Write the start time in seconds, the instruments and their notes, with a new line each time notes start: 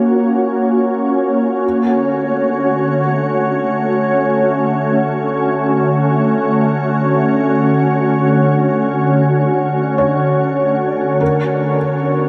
Already playing: ambient pad A#3 C#4 F4 F#4 C#5
1.63 ambient pad D3
2.05 ambient pad A3
9.98 felt piano C#5
11.21 felt piano A#4
11.67 ambient pad B3